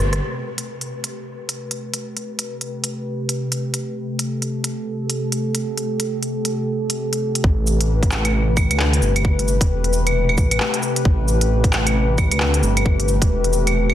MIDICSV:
0, 0, Header, 1, 4, 480
1, 0, Start_track
1, 0, Key_signature, 0, "minor"
1, 0, Tempo, 451128
1, 239, Time_signature, 4, 2, 24, 8
1, 14832, End_track
2, 0, Start_track
2, 0, Title_t, "Ambient pad"
2, 0, Program_c, 0, 92
2, 0, Note_on_c, 0, 48, 76
2, 0, Note_on_c, 0, 57, 73
2, 0, Note_on_c, 0, 67, 71
2, 0, Note_on_c, 0, 71, 86
2, 195, Note_off_c, 0, 48, 0
2, 195, Note_off_c, 0, 67, 0
2, 196, Note_off_c, 0, 57, 0
2, 196, Note_off_c, 0, 71, 0
2, 245, Note_on_c, 0, 48, 70
2, 246, Note_on_c, 0, 71, 82
2, 247, Note_on_c, 0, 67, 67
2, 248, Note_on_c, 0, 57, 68
2, 4044, Note_off_c, 0, 71, 0
2, 4069, Note_on_c, 0, 69, 81
2, 7876, Note_off_c, 0, 69, 0
2, 7880, Note_off_c, 0, 48, 0
2, 7881, Note_off_c, 0, 57, 0
2, 7881, Note_off_c, 0, 67, 0
2, 7913, Note_on_c, 0, 71, 89
2, 7915, Note_on_c, 0, 48, 81
2, 7915, Note_on_c, 0, 67, 71
2, 7916, Note_on_c, 0, 57, 70
2, 14832, Note_off_c, 0, 48, 0
2, 14832, Note_off_c, 0, 57, 0
2, 14832, Note_off_c, 0, 67, 0
2, 14832, Note_off_c, 0, 71, 0
2, 14832, End_track
3, 0, Start_track
3, 0, Title_t, "Detuned saw bass"
3, 0, Program_c, 1, 39
3, 0, Note_on_c, 1, 31, 104
3, 220, Note_off_c, 1, 31, 0
3, 7915, Note_on_c, 1, 33, 106
3, 9257, Note_on_c, 1, 38, 105
3, 9273, Note_off_c, 1, 33, 0
3, 9584, Note_off_c, 1, 38, 0
3, 9596, Note_on_c, 1, 31, 89
3, 10203, Note_off_c, 1, 31, 0
3, 10222, Note_on_c, 1, 28, 82
3, 11027, Note_off_c, 1, 28, 0
3, 11043, Note_on_c, 1, 33, 109
3, 11266, Note_off_c, 1, 33, 0
3, 11759, Note_on_c, 1, 33, 105
3, 13099, Note_on_c, 1, 38, 106
3, 13115, Note_off_c, 1, 33, 0
3, 13425, Note_off_c, 1, 38, 0
3, 13439, Note_on_c, 1, 31, 85
3, 14045, Note_off_c, 1, 31, 0
3, 14063, Note_on_c, 1, 28, 83
3, 14832, Note_off_c, 1, 28, 0
3, 14832, End_track
4, 0, Start_track
4, 0, Title_t, "Drums"
4, 136, Note_on_c, 9, 37, 83
4, 136, Note_on_c, 9, 42, 53
4, 242, Note_off_c, 9, 37, 0
4, 242, Note_off_c, 9, 42, 0
4, 617, Note_on_c, 9, 42, 55
4, 724, Note_off_c, 9, 42, 0
4, 865, Note_on_c, 9, 42, 28
4, 971, Note_off_c, 9, 42, 0
4, 1106, Note_on_c, 9, 42, 51
4, 1212, Note_off_c, 9, 42, 0
4, 1585, Note_on_c, 9, 42, 51
4, 1691, Note_off_c, 9, 42, 0
4, 1819, Note_on_c, 9, 42, 40
4, 1926, Note_off_c, 9, 42, 0
4, 2059, Note_on_c, 9, 42, 51
4, 2166, Note_off_c, 9, 42, 0
4, 2305, Note_on_c, 9, 42, 29
4, 2411, Note_off_c, 9, 42, 0
4, 2541, Note_on_c, 9, 42, 55
4, 2647, Note_off_c, 9, 42, 0
4, 2778, Note_on_c, 9, 42, 29
4, 2885, Note_off_c, 9, 42, 0
4, 3018, Note_on_c, 9, 42, 52
4, 3125, Note_off_c, 9, 42, 0
4, 3501, Note_on_c, 9, 42, 50
4, 3607, Note_off_c, 9, 42, 0
4, 3743, Note_on_c, 9, 42, 42
4, 3850, Note_off_c, 9, 42, 0
4, 3977, Note_on_c, 9, 42, 48
4, 4083, Note_off_c, 9, 42, 0
4, 4460, Note_on_c, 9, 42, 54
4, 4566, Note_off_c, 9, 42, 0
4, 4704, Note_on_c, 9, 42, 29
4, 4810, Note_off_c, 9, 42, 0
4, 4939, Note_on_c, 9, 42, 52
4, 5045, Note_off_c, 9, 42, 0
4, 5422, Note_on_c, 9, 42, 50
4, 5528, Note_off_c, 9, 42, 0
4, 5663, Note_on_c, 9, 42, 42
4, 5769, Note_off_c, 9, 42, 0
4, 5901, Note_on_c, 9, 42, 47
4, 6008, Note_off_c, 9, 42, 0
4, 6145, Note_on_c, 9, 42, 29
4, 6251, Note_off_c, 9, 42, 0
4, 6381, Note_on_c, 9, 42, 53
4, 6488, Note_off_c, 9, 42, 0
4, 6624, Note_on_c, 9, 42, 27
4, 6730, Note_off_c, 9, 42, 0
4, 6863, Note_on_c, 9, 42, 51
4, 6969, Note_off_c, 9, 42, 0
4, 7340, Note_on_c, 9, 42, 52
4, 7446, Note_off_c, 9, 42, 0
4, 7583, Note_on_c, 9, 42, 38
4, 7690, Note_off_c, 9, 42, 0
4, 7823, Note_on_c, 9, 42, 46
4, 7916, Note_on_c, 9, 36, 120
4, 7930, Note_off_c, 9, 42, 0
4, 8023, Note_off_c, 9, 36, 0
4, 8160, Note_on_c, 9, 69, 73
4, 8267, Note_off_c, 9, 69, 0
4, 8305, Note_on_c, 9, 42, 63
4, 8411, Note_off_c, 9, 42, 0
4, 8540, Note_on_c, 9, 36, 101
4, 8544, Note_on_c, 9, 42, 33
4, 8635, Note_on_c, 9, 39, 105
4, 8635, Note_on_c, 9, 69, 74
4, 8646, Note_off_c, 9, 36, 0
4, 8650, Note_off_c, 9, 42, 0
4, 8741, Note_off_c, 9, 39, 0
4, 8741, Note_off_c, 9, 69, 0
4, 8777, Note_on_c, 9, 42, 58
4, 8777, Note_on_c, 9, 75, 55
4, 8884, Note_off_c, 9, 42, 0
4, 8884, Note_off_c, 9, 75, 0
4, 9117, Note_on_c, 9, 36, 104
4, 9119, Note_on_c, 9, 69, 73
4, 9119, Note_on_c, 9, 75, 63
4, 9223, Note_off_c, 9, 36, 0
4, 9225, Note_off_c, 9, 69, 0
4, 9225, Note_off_c, 9, 75, 0
4, 9265, Note_on_c, 9, 42, 60
4, 9265, Note_on_c, 9, 75, 70
4, 9358, Note_on_c, 9, 39, 108
4, 9371, Note_off_c, 9, 42, 0
4, 9371, Note_off_c, 9, 75, 0
4, 9465, Note_off_c, 9, 39, 0
4, 9506, Note_on_c, 9, 42, 45
4, 9600, Note_on_c, 9, 69, 76
4, 9613, Note_off_c, 9, 42, 0
4, 9706, Note_off_c, 9, 69, 0
4, 9745, Note_on_c, 9, 42, 57
4, 9745, Note_on_c, 9, 75, 64
4, 9839, Note_on_c, 9, 36, 120
4, 9852, Note_off_c, 9, 42, 0
4, 9852, Note_off_c, 9, 75, 0
4, 9945, Note_off_c, 9, 36, 0
4, 9992, Note_on_c, 9, 42, 35
4, 10087, Note_on_c, 9, 69, 71
4, 10099, Note_off_c, 9, 42, 0
4, 10194, Note_off_c, 9, 69, 0
4, 10223, Note_on_c, 9, 36, 116
4, 10229, Note_on_c, 9, 42, 64
4, 10330, Note_off_c, 9, 36, 0
4, 10335, Note_off_c, 9, 42, 0
4, 10473, Note_on_c, 9, 42, 35
4, 10566, Note_on_c, 9, 69, 71
4, 10579, Note_off_c, 9, 42, 0
4, 10672, Note_off_c, 9, 69, 0
4, 10711, Note_on_c, 9, 42, 57
4, 10711, Note_on_c, 9, 75, 53
4, 10817, Note_off_c, 9, 42, 0
4, 10817, Note_off_c, 9, 75, 0
4, 10950, Note_on_c, 9, 75, 64
4, 11041, Note_on_c, 9, 36, 112
4, 11041, Note_on_c, 9, 69, 68
4, 11057, Note_off_c, 9, 75, 0
4, 11147, Note_off_c, 9, 36, 0
4, 11148, Note_off_c, 9, 69, 0
4, 11186, Note_on_c, 9, 42, 58
4, 11186, Note_on_c, 9, 75, 67
4, 11280, Note_on_c, 9, 39, 114
4, 11293, Note_off_c, 9, 42, 0
4, 11293, Note_off_c, 9, 75, 0
4, 11386, Note_off_c, 9, 39, 0
4, 11425, Note_on_c, 9, 42, 48
4, 11519, Note_on_c, 9, 69, 72
4, 11531, Note_off_c, 9, 42, 0
4, 11625, Note_off_c, 9, 69, 0
4, 11665, Note_on_c, 9, 42, 55
4, 11760, Note_on_c, 9, 36, 124
4, 11772, Note_off_c, 9, 42, 0
4, 11867, Note_off_c, 9, 36, 0
4, 12004, Note_on_c, 9, 69, 69
4, 12111, Note_off_c, 9, 69, 0
4, 12144, Note_on_c, 9, 42, 60
4, 12250, Note_off_c, 9, 42, 0
4, 12385, Note_on_c, 9, 36, 108
4, 12386, Note_on_c, 9, 42, 31
4, 12480, Note_on_c, 9, 39, 114
4, 12480, Note_on_c, 9, 69, 70
4, 12491, Note_off_c, 9, 36, 0
4, 12493, Note_off_c, 9, 42, 0
4, 12586, Note_off_c, 9, 39, 0
4, 12586, Note_off_c, 9, 69, 0
4, 12626, Note_on_c, 9, 42, 58
4, 12626, Note_on_c, 9, 75, 52
4, 12732, Note_off_c, 9, 42, 0
4, 12732, Note_off_c, 9, 75, 0
4, 12961, Note_on_c, 9, 36, 107
4, 12961, Note_on_c, 9, 69, 69
4, 12961, Note_on_c, 9, 75, 57
4, 13067, Note_off_c, 9, 36, 0
4, 13067, Note_off_c, 9, 69, 0
4, 13067, Note_off_c, 9, 75, 0
4, 13103, Note_on_c, 9, 42, 59
4, 13103, Note_on_c, 9, 75, 65
4, 13195, Note_on_c, 9, 39, 115
4, 13209, Note_off_c, 9, 42, 0
4, 13209, Note_off_c, 9, 75, 0
4, 13301, Note_off_c, 9, 39, 0
4, 13343, Note_on_c, 9, 42, 47
4, 13440, Note_on_c, 9, 69, 69
4, 13449, Note_off_c, 9, 42, 0
4, 13546, Note_off_c, 9, 69, 0
4, 13586, Note_on_c, 9, 42, 56
4, 13586, Note_on_c, 9, 75, 63
4, 13679, Note_on_c, 9, 36, 116
4, 13693, Note_off_c, 9, 42, 0
4, 13693, Note_off_c, 9, 75, 0
4, 13786, Note_off_c, 9, 36, 0
4, 13828, Note_on_c, 9, 42, 31
4, 13921, Note_on_c, 9, 69, 72
4, 13934, Note_off_c, 9, 42, 0
4, 14027, Note_off_c, 9, 69, 0
4, 14063, Note_on_c, 9, 36, 114
4, 14066, Note_on_c, 9, 42, 60
4, 14169, Note_off_c, 9, 36, 0
4, 14172, Note_off_c, 9, 42, 0
4, 14304, Note_on_c, 9, 42, 31
4, 14396, Note_on_c, 9, 69, 72
4, 14411, Note_off_c, 9, 42, 0
4, 14503, Note_off_c, 9, 69, 0
4, 14545, Note_on_c, 9, 42, 58
4, 14545, Note_on_c, 9, 75, 49
4, 14652, Note_off_c, 9, 42, 0
4, 14652, Note_off_c, 9, 75, 0
4, 14785, Note_on_c, 9, 75, 59
4, 14832, Note_off_c, 9, 75, 0
4, 14832, End_track
0, 0, End_of_file